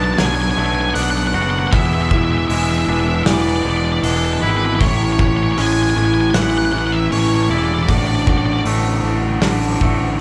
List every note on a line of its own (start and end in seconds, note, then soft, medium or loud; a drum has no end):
0.00 0.18 B1 loud
0.00 0.16 B2 medium
0.00 0.58 B2 medium
0.00 0.17 F#3 medium
0.00 0.56 A3 medium
0.00 0.17 B3 medium
0.00 0.18 D4 medium
0.04 0.12 A5 medium
0.14 0.54 B2 loud
0.14 0.18 A5 medium
0.18 0.56 B1 loud
0.18 0.55 F#3 loud
0.18 0.55 B3 loud
0.18 0.56 D4 loud
0.18 0.26 G#5 loud
0.18 snare loud
0.18 open hi-hat medium
0.26 0.34 G#5 medium
0.35 0.41 G#5 loud
0.42 0.50 G#5 medium
0.51 0.59 G#5 loud
0.56 0.95 B1 medium
0.56 0.93 B2 medium
0.56 0.94 F#3 medium
0.56 1.73 A3 medium
0.56 0.95 B3 medium
0.56 0.95 D4 loud
0.56 0.65 G#5 medium
0.66 0.74 G#5 loud
0.74 0.81 G#5 medium
0.81 0.89 G#5 loud
0.90 0.94 G#5 medium
0.94 1.33 B1 medium
0.94 1.32 B2 medium
0.94 1.32 F#3 medium
0.94 1.33 B3 medium
0.94 1.33 D4 medium
0.94 1.03 F#5 loud
0.94 open hi-hat medium
1.03 1.10 F#5 medium
1.10 1.18 F#5 loud
1.18 1.26 F#5 medium
1.27 1.34 F#5 loud
1.33 1.71 F#1 medium
1.33 1.70 B2 medium
1.33 1.70 F#3 medium
1.33 1.70 B3 loud
1.33 1.71 D4 medium
1.33 1.73 F#4 medium
1.33 1.42 F#5 medium
1.43 1.50 F#5 medium
1.50 1.58 F#5 medium
1.59 1.67 F#5 loud
1.67 2.10 E3 loud
1.67 1.75 F#5 medium
1.71 2.47 E1 medium
1.71 3.65 E2 medium
1.71 2.11 G#3 loud
1.71 2.10 B3 loud
1.71 2.12 E4 loud
1.71 1.79 E5 loud
1.71 kick loud
1.71 open hi-hat medium
1.80 1.85 E5 medium
1.86 1.93 E5 medium
1.94 2.02 E5 medium
2.02 2.09 E5 loud
2.09 2.49 E3 medium
2.09 2.50 G#3 medium
2.09 2.50 B3 loud
2.09 2.51 E4 medium
2.09 2.17 E5 medium
2.09 kick medium
2.18 2.24 E5 medium
2.25 2.31 E5 medium
2.32 2.37 E5 medium
2.38 2.45 E5 medium
2.48 2.87 E1 medium
2.48 2.87 E3 medium
2.48 2.88 G#3 medium
2.48 2.87 B3 loud
2.48 2.89 E4 loud
2.48 2.54 E5 medium
2.48 open hi-hat medium
2.55 2.62 E5 medium
2.63 2.70 E5 loud
2.71 2.78 E5 medium
2.78 2.86 E5 loud
2.86 3.26 E1 loud
2.86 3.25 E3 medium
2.86 3.25 G#3 loud
2.86 3.26 B3 medium
2.86 4.03 D4 medium
2.86 3.26 E4 loud
2.86 2.93 E5 medium
2.93 3.00 E5 medium
3.00 3.07 E5 medium
3.08 3.15 E5 medium
3.16 3.23 E5 medium
3.23 3.64 E1 loud
3.23 3.63 E3 medium
3.23 3.64 G#3 loud
3.23 3.65 B3 medium
3.23 3.65 E4 loud
3.23 3.33 D5 loud
3.23 3.26 E5 medium
3.23 snare loud
3.23 open hi-hat medium
3.33 3.41 D5 medium
3.42 3.48 D5 medium
3.49 3.56 D5 medium
3.56 3.62 D5 medium
3.63 4.02 E1 medium
3.63 4.02 E3 medium
3.63 4.02 G#3 medium
3.63 4.03 B3 medium
3.63 4.03 E4 loud
3.63 3.70 D5 medium
3.70 3.77 D5 medium
3.77 3.85 D5 medium
3.85 3.92 D5 medium
3.92 3.99 D5 medium
4.03 4.41 E1 loud
4.03 4.41 E3 medium
4.03 4.41 G#3 medium
4.03 4.41 B3 medium
4.03 4.81 D4 medium
4.03 4.42 E4 medium
4.03 4.11 A4 medium
4.03 open hi-hat medium
4.11 4.17 A4 medium
4.17 4.24 A4 medium
4.25 4.32 A4 medium
4.33 4.40 A4 medium
4.42 4.80 G#1 loud
4.42 4.78 E3 medium
4.42 4.78 G#3 medium
4.42 4.79 B3 medium
4.42 4.79 E4 loud
4.42 4.50 B4 medium
4.51 4.57 B4 medium
4.57 4.65 B4 medium
4.65 4.73 B4 medium
4.75 4.83 B4 medium
4.80 5.55 A1 loud
4.80 5.17 A2 medium
4.80 5.17 E3 loud
4.80 5.19 A3 loud
4.80 5.19 C#4 loud
4.80 5.19 E4 loud
4.80 4.88 C#5 medium
4.80 kick loud
4.80 open hi-hat medium
4.88 4.96 C#5 medium
4.97 5.04 C#5 medium
5.04 5.12 C#5 medium
5.12 5.20 C#5 medium
5.18 5.56 A2 medium
5.18 5.56 E3 medium
5.18 5.57 A3 medium
5.18 5.57 C#4 loud
5.18 5.56 E4 loud
5.18 5.27 C#5 medium
5.18 kick medium
5.28 5.36 C#5 medium
5.37 5.43 C#5 medium
5.43 5.51 C#5 medium
5.52 5.60 C#5 medium
5.56 5.95 A1 loud
5.56 5.94 A2 medium
5.56 5.95 E3 medium
5.56 7.50 G#3 medium
5.56 5.96 A3 loud
5.56 5.96 C#4 loud
5.56 5.95 E4 loud
5.56 5.66 G#5 medium
5.56 open hi-hat medium
5.66 5.72 G#5 medium
5.73 5.81 G#5 medium
5.83 5.89 G#5 medium
5.90 5.98 G#5 medium
5.95 6.34 A1 loud
5.95 6.32 A2 medium
5.95 6.33 E3 medium
5.95 6.34 A3 medium
5.95 6.34 C#4 medium
5.95 6.34 E4 medium
5.95 6.05 G#5 medium
6.05 6.13 G#5 medium
6.14 6.20 G#5 medium
6.21 6.29 G#5 medium
6.30 6.71 A2 loud
6.30 6.71 E3 loud
6.30 6.34 G#5 medium
6.30 snare loud
6.30 open hi-hat medium
6.34 6.72 A1 loud
6.34 6.73 A3 loud
6.34 6.72 C#4 loud
6.34 6.72 E4 loud
6.34 6.42 F#5 loud
6.43 6.50 F#5 medium
6.50 6.57 F#5 medium
6.58 6.65 F#5 medium
6.65 6.72 F#5 medium
6.72 7.10 A1 medium
6.72 7.09 A2 medium
6.72 7.09 E3 medium
6.72 7.11 A3 medium
6.72 7.10 C#4 medium
6.72 7.11 E4 medium
6.72 6.78 F#5 medium
6.78 6.86 F#5 medium
6.87 6.94 F#5 medium
6.92 7.11 E5 medium
7.10 7.49 A1 medium
7.10 7.47 A2 medium
7.10 7.48 E3 medium
7.10 7.50 A3 medium
7.10 7.49 C#4 medium
7.10 7.49 E4 medium
7.10 7.19 C#5 medium
7.10 open hi-hat medium
7.19 7.27 C#5 medium
7.28 7.35 C#5 medium
7.35 7.43 C#5 medium
7.43 7.50 C#5 medium
7.49 7.87 E1 medium
7.49 7.86 A2 loud
7.49 7.86 E3 medium
7.49 7.88 A3 medium
7.49 7.86 C#4 medium
7.49 7.87 E4 loud
7.49 7.58 D5 medium
7.58 7.64 D5 medium
7.65 7.73 D5 medium
7.74 7.82 D5 medium
7.83 7.89 D5 medium
7.87 8.63 A1 loud
7.87 8.25 A2 medium
7.87 8.26 D3 loud
7.87 8.27 A3 loud
7.87 8.28 D4 loud
7.87 8.27 F#4 loud
7.87 7.97 D5 medium
7.87 kick loud
7.87 open hi-hat medium
7.98 8.06 D5 medium
8.07 8.15 D5 medium
8.15 8.22 D5 medium
8.22 8.64 A2 medium
8.22 8.29 D5 medium
8.27 8.64 D3 medium
8.27 8.66 A3 medium
8.27 8.66 D4 loud
8.27 8.66 F#4 loud
8.27 8.37 D5 medium
8.27 kick medium
8.38 8.45 D5 medium
8.45 8.53 D5 medium
8.53 8.61 D5 medium
8.65 9.03 A1 medium
8.65 9.02 A2 medium
8.65 9.03 D3 medium
8.65 9.04 A3 loud
8.65 9.04 D4 loud
8.65 9.05 F#4 loud
8.65 open hi-hat medium
9.03 9.41 A1 medium
9.03 9.40 A2 medium
9.03 9.41 D3 medium
9.03 9.41 A3 loud
9.03 9.43 D4 medium
9.03 9.42 F#4 medium
9.41 9.79 A1 loud
9.41 9.79 A2 loud
9.41 9.80 D3 loud
9.41 9.80 A3 loud
9.41 9.82 D4 loud
9.41 9.81 F#4 loud
9.41 snare loud
9.41 open hi-hat medium
9.81 10.18 A1 medium
9.81 10.18 A2 medium
9.81 10.19 D3 loud
9.81 10.19 A3 medium
9.81 10.20 D4 medium
9.81 10.20 F#4 loud
9.81 kick medium